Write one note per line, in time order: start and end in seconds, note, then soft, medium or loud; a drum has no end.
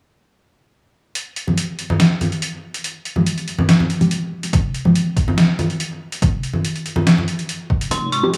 1.15 closed hi-hat medium
1.36 closed hi-hat soft
1.47 1.59 F3 medium
1.47 1.59 G#3 medium
1.47 1.59 C4 medium
1.47 1.59 G4 loud
1.47 high conga medium
1.58 closed hi-hat medium
1.79 closed hi-hat soft
1.90 high conga medium
2.00 snare loud
2.00 closed hi-hat medium
2.21 closed hi-hat soft
2.21 high conga medium
2.32 closed hi-hat soft
2.42 closed hi-hat medium
2.74 closed hi-hat medium
2.84 closed hi-hat medium
3.05 closed hi-hat soft
3.16 3.28 F3 medium
3.16 3.28 G#3 medium
3.16 3.28 C4 medium
3.16 3.28 G4 medium
3.16 high conga medium
3.26 closed hi-hat medium
3.38 closed hi-hat soft
3.48 closed hi-hat soft
3.59 high conga medium
3.69 snare loud
3.69 closed hi-hat medium
3.80 high conga medium
3.90 closed hi-hat soft
4.01 4.12 F3 medium
4.01 4.12 G#3 medium
4.01 4.12 C4 medium
4.01 4.12 G4 loud
4.01 closed hi-hat soft
4.11 closed hi-hat medium
4.43 closed hi-hat medium
4.53 kick loud
4.53 closed hi-hat medium
4.74 closed hi-hat soft
4.85 4.97 F3 medium
4.85 4.97 G#3 medium
4.85 4.97 C4 medium
4.85 4.97 G4 loud
4.85 high conga medium
4.95 closed hi-hat medium
5.17 kick medium
5.17 closed hi-hat soft
5.28 high conga medium
5.38 snare loud
5.38 closed hi-hat medium
5.59 closed hi-hat soft
5.59 high conga medium
5.70 closed hi-hat soft
5.80 closed hi-hat medium
6.12 closed hi-hat medium
6.22 kick loud
6.22 closed hi-hat medium
6.43 closed hi-hat soft
6.53 high conga medium
6.65 closed hi-hat medium
6.76 closed hi-hat soft
6.86 closed hi-hat soft
6.96 high conga medium
7.07 snare loud
7.07 closed hi-hat medium
7.18 high conga medium
7.28 closed hi-hat soft
7.39 closed hi-hat soft
7.49 closed hi-hat medium
7.70 kick medium
7.81 closed hi-hat medium
7.91 8.37 F1 medium
7.91 8.37 G#3 medium
7.91 8.37 F4 medium
7.91 8.37 G#4 medium
7.91 8.13 C6 loud
7.91 kick loud
7.91 closed hi-hat medium
7.91 riser medium
8.12 8.37 C#6 loud
8.12 closed hi-hat soft
8.23 8.35 F3 medium
8.23 8.35 G#3 medium
8.23 8.35 C4 medium
8.23 8.35 G4 loud
8.34 closed hi-hat medium